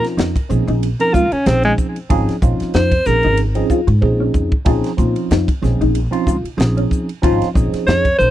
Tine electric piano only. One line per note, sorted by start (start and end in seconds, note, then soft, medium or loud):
0.00 0.36 F3 medium
0.00 0.36 C4 medium
0.00 0.36 C#4 medium
0.00 0.36 D#4 medium
0.00 0.36 F4 medium
0.49 0.86 F3 medium
0.49 0.86 C4 medium
0.49 0.87 C#4 medium
0.49 0.87 D#4 medium
0.49 0.87 G#4 medium
1.00 1.23 F3 medium
1.00 1.23 C4 medium
1.00 1.23 C#4 medium
1.00 1.24 D#4 medium
1.00 1.24 A#4 medium
1.33 1.39 D#4 soft
1.33 1.40 G#4 soft
1.46 1.96 F3 medium
1.46 1.96 C4 medium
1.46 1.96 C#4 medium
1.46 1.96 D#4 medium
1.46 1.97 G#4 medium
2.10 2.35 F3 loud
2.10 2.35 C4 loud
2.10 2.35 C#4 loud
2.10 2.35 D#4 medium
2.10 2.35 G#4 loud
2.42 2.92 F3 medium
2.42 2.92 C4 medium
2.42 2.92 C#4 medium
2.42 2.93 D#4 medium
2.42 2.93 F4 medium
3.06 3.43 F3 medium
3.06 3.43 C4 medium
3.06 3.44 C#4 medium
3.06 3.44 D#4 medium
3.06 3.44 G#4 medium
3.55 3.79 F3 medium
3.55 3.79 C4 medium
3.55 3.80 C#4 medium
3.55 3.80 D#4 medium
3.55 3.80 G#4 loud
3.89 3.95 G#4 soft
4.01 4.52 F3 medium
4.01 4.52 C4 medium
4.01 4.52 C#4 medium
4.01 4.52 D#4 medium
4.01 4.53 G#4 medium
4.65 4.91 F3 loud
4.65 4.91 C4 loud
4.65 4.92 C#4 loud
4.65 4.92 D#4 loud
4.65 4.92 G#4 loud
4.97 5.48 F3 medium
4.97 5.48 C4 medium
4.97 5.48 C#4 medium
4.97 5.48 D#4 medium
4.97 5.49 F4 medium
5.61 5.99 F3 medium
5.61 5.99 C4 medium
5.61 5.99 C#4 medium
5.61 6.00 D#4 medium
5.61 6.00 G#4 medium
6.11 6.35 F3 loud
6.11 6.35 C4 medium
6.11 6.36 C#4 medium
6.11 6.36 D#4 medium
6.11 6.36 F4 loud
6.57 7.08 F3 medium
6.57 7.08 C4 medium
6.57 7.08 C#4 medium
6.57 7.09 D#4 medium
6.57 7.09 G#4 medium
7.22 7.48 F3 loud
7.22 7.48 C4 medium
7.22 7.48 C#4 loud
7.22 7.48 D#4 loud
7.22 7.49 F4 loud
7.54 8.05 F3 medium
7.54 8.05 C4 medium
7.54 8.05 C#4 medium
7.54 8.05 D#4 medium
7.54 8.06 G#4 medium
8.18 8.30 F3 medium
8.18 8.30 C4 medium
8.18 8.30 C#4 medium
8.18 8.30 D#4 medium
8.18 8.30 A#4 medium